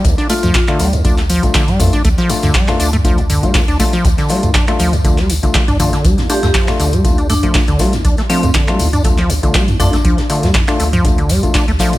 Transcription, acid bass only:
X:1
M:4/4
L:1/16
Q:"Swing 16ths" 1/4=120
K:Dm
V:1 name="Acid bass" clef=bass
D,, D A, F, D,, D, G, D,, D A, F, D,, D, G, D,, D | A, F, D,, D, G, D,, D A, F, D,, D, G, D,, D A, F, | D,, D, G, D,, D A, F, D,, D, G, D, D, D, D D, D, | G, D,, D A, F, D,, D, G, D,, D A, F, D,, D, G, D,, |
D A, F, D,, D, G, D,, D A, F, D,, D, G, D,, D A, | F, D,, D, G, D,, D A, F, D,, D, G, D,, D A, F, D,, |]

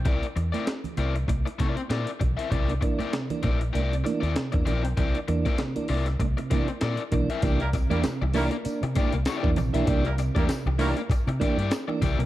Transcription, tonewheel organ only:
X:1
M:4/4
L:1/16
Q:"Swing 16ths" 1/4=98
K:Cmix
V:1 name="Tonewheel organ"
z16 | C, [B,D] [E,B,D] z C, [E,B,D] [B,D] z [B,D] C, [E,B,D] z C, [E,B,D] [B,D] z | C, [B,D] [E,B,D] z C, [E,B,D] [B,D] z [B,D] C, [E,B,D] z3 [E,B,D] z | [E,B,D] z C, [E,B,D] C, z [E,B,D] [B,D] [B,D] C, [B,D] z2 [E,B,D] C, [E,B,D] |
[E,B,D] z C, [E,B,D] C, z [E,B,D] [B,D] z2 [E,B,D] z2 [E,B,D] z C, |]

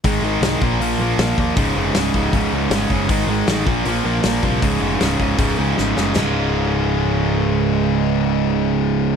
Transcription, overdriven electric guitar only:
X:1
M:4/4
L:1/8
Q:1/4=157
K:Db
V:1 name="Overdriven electric guitar" clef=bass
[A,,E,A,] [A,,E,A,] [A,,E,A,] [B,,F,B,] [B,,F,B,] [B,,F,B,] [B,,F,B,] [B,,F,B,] | [D,,A,,D,] [D,,A,,D,] [D,,A,,D,] [D,,A,,D,] [D,,A,,D,] [D,,A,,D,] [D,,A,,D,] [D,,A,,D,] | [A,,E,A,] [A,,E,A,] [A,,E,A,] [B,,F,B,] [B,,F,B,] [B,,F,B,] [B,,F,B,] [B,,F,B,] | [D,,A,,D,] [D,,A,,D,] [D,,A,,D,] [D,,A,,D,] [D,,A,,D,] [D,,A,,D,] [D,,A,,D,] [D,,A,,D,] |
[D,,A,,D,]8- | [D,,A,,D,]8 |]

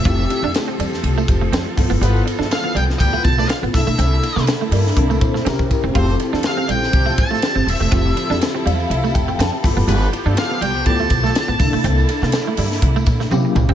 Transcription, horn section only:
X:1
M:4/4
L:1/16
Q:"Swing 16ths" 1/4=122
K:F
V:1 name="Horn section"
z16 | [=B,F=B]2 z [A,FA]3 z2 [G,DEG] [B,FB] z [DABd] z4 | z16 | [CFAc]2 z [A,FA]3 z2 [G,CEG] [A,FA] z [A,FA] z4 |
z16 | [=B,F=B]2 z [A,FA]3 z2 [G,DEG] [A,FA] z [A,FA] z4 | z16 |]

